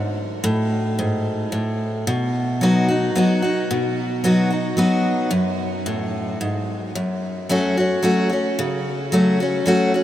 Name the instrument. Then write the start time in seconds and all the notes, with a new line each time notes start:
steel-string acoustic guitar
Already playing: G#2
0.44 A2
0.99 G#2
1.52 A2
2.07 B2
2.61 F#3 B3 D#4 F#4
2.88 D#4 F#4
3.15 F#3 B3 D#4 F#4
3.42 D#4 F#4
3.71 B2
4.24 F#3 B3 D#4 F#4
4.51 D#4 F#4
4.77 F#3 B3 D#4 F#4
5.31 F#2
5.86 A2
6.41 G#2
6.95 F#2
7.49 F#3 A3 C#4 F#4
7.77 C#4 F#4
8.03 F#3 A3 C#4 F#4
8.29 C#4 F#4
8.59 C#3
9.12 F#3 A3 C#4 F#4
9.40 C#4 F#4
9.66 F#3 A3 C#4 F#4
9.94 C#4 F#4